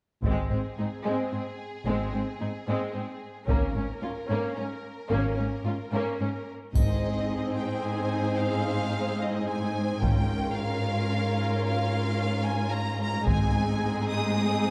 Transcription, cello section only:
0.23 G#2
0.51 G#2
0.78 G#2
1.06 G#2
1.33 G#2
1.86 G#2
2.13 G#2
2.41 G#2
2.67 G#2
2.93 G#2
3.48 G#2
3.74 G#2
4.01 G#2
4.30 G#2
4.57 G#2
5.11 G#2
5.38 G#2
5.64 G#2
5.92 G#2
6.20 G#2
6.74 G#2
10.03 G#2
13.25 G#2

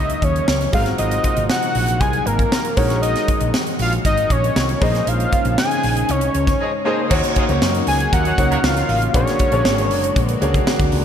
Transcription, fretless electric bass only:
Already playing: C#2
0.22 D#2
0.48 C#2
0.73 G#1
0.99 G#1
1.37 G#1
1.75 A#1
2.01 C2
2.26 G#1
2.78 A#1
3.41 A#1
3.79 A#1
4.05 G#1
4.30 A#1
4.56 C2
4.82 A#1
5.07 A#1
5.45 A#1
5.84 A#1
6.09 C2
6.35 C#2
7.11 D#2
7.49 C#2
7.62 F#2
7.87 C#2
8.13 D#2
8.38 C#2
8.63 C#2
8.89 A1
9.14 A#1
9.52 A#1
9.65 G#1
9.91 F#1
10.16 A#1
10.41 C#2
10.80 D2
10.93 C#2

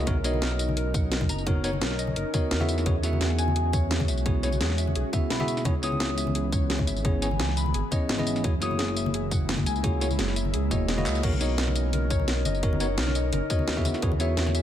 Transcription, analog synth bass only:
0.07 B1
0.42 B1
1.29 F#1
1.81 B1
2.16 F#1
2.51 E2
2.86 E2
3.21 E2
4.08 B1
4.61 E2
4.96 B1
5.31 B1
5.65 C#2
6.00 C#2
6.87 G#1
7.40 C#2
7.74 G#1
8.09 G#1
8.44 F#1
8.79 F#1
9.66 C#2
10.19 F#1
10.54 C#2
10.71 E1
11.06 C#2
11.23 B1
11.58 B1
12.46 F#1
12.98 B1
13.33 F#1
13.68 D#2
13.85 E2
14.03 E2
14.37 E2

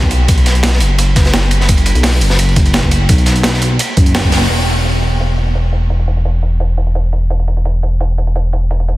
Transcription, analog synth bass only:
Already playing: B1
0.81 F#1
1.95 B1
2.21 F#1
3.09 B1
3.97 F#1
4.32 F#1
4.50 E1

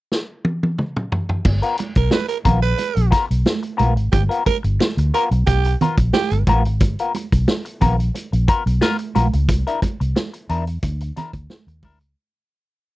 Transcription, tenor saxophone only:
1.97 A#4
2.12 B4
2.29 A#4
2.63 B4
4.12 G4
4.46 A#4
5.14 A#4
5.46 G4
6.14 G4

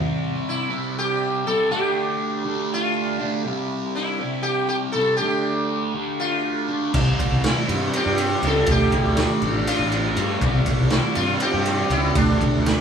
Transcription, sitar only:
0.49 E4
0.99 G4
1.47 A4
1.71 G4
2.74 F4
3.95 E4
4.43 G4
4.69 G4
4.92 A4
5.17 G4
6.20 F4
7.46 E4
7.96 G4
8.47 A4
8.71 G4
9.67 F4
10.91 E4
11.15 F4
11.42 G4
11.92 E4
12.17 D4

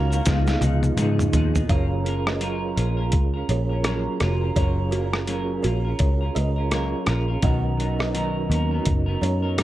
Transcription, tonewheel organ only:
Already playing: C#4 D#4 F#4 A#4
0.25 B3 D#4 F4
0.30 G#4
1.67 C#4 F4 A#4
1.73 G#4
7.40 C#4 D#4 F#4
7.46 A#4

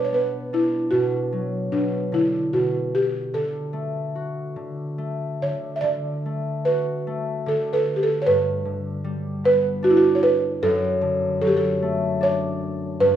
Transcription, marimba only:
0.05 C#5
0.14 B4
0.54 E4
0.91 F#4
1.72 D4
2.14 E4
2.53 F#4
2.95 G4
3.34 A4
5.42 C#5
5.76 E5
5.81 D5
6.65 B4
7.48 A4
7.73 A4 B4
7.96 G4
8.03 A4
8.22 C#5
8.27 B4
9.45 B4
9.84 F#4
9.90 E4
9.97 F#4
10.15 C#5
10.23 B4
10.63 A4
11.42 A4
11.47 G4
11.57 A4
12.23 C#5
13.00 B4

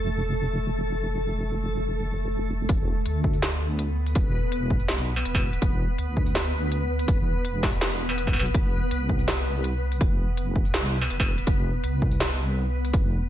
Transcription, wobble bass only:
Already playing: F1
2.69 E1
3.06 D2
4.16 E1
4.89 B1
5.25 E1
5.62 E1
5.98 D2
7.08 E1
7.81 E1
8.36 B1
8.54 F1
8.91 C2
10.01 F1
10.74 C2
11.11 F1
11.47 F1
11.84 C2
12.94 F1

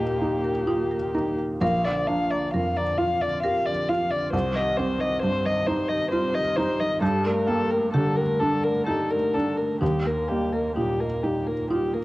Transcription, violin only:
Already playing: G4
1.62 F5
1.84 D5
2.07 F5
2.30 D5
2.54 F5
2.77 D5
2.98 F5
3.21 D5
3.43 F5
3.66 D5
3.89 F5
4.11 D5
4.33 C5
4.55 D#5
4.77 C5
5.00 D#5
5.22 C5
5.46 D#5
5.66 C5
5.88 D#5
6.11 C5
6.34 D#5
6.56 C5
6.80 D#5
7.02 A4
7.25 A#4
7.47 A4
7.70 A#4
7.93 A4
8.16 A#4
8.40 A4
8.64 A#4
8.87 A4
9.11 A#4
9.34 A4
9.57 A#4
9.81 G4
10.06 A#4
10.28 G4
10.52 A#4
10.76 G4
11.00 A#4
11.23 G4
11.47 A#4
11.71 G4
11.94 A#4

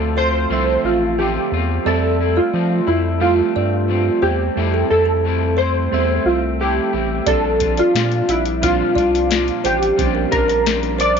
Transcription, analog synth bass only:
Already playing: D2
0.50 C2
0.84 A1
1.52 E2
1.86 F2
2.54 F3
2.88 F2
3.56 G2
4.22 E2
4.57 F2
4.91 F2
5.93 E2
6.25 C2
6.94 A1
7.27 A#1
7.95 A#2
8.29 A#1
8.96 C2
9.65 A1
9.99 A#1
10.33 A#1

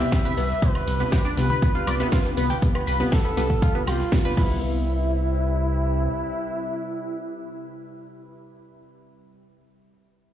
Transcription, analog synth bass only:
0.37 C2
0.87 C2
1.37 C2
1.87 C2
2.37 C2
2.87 C2
3.37 C2
3.87 C2
4.37 C2

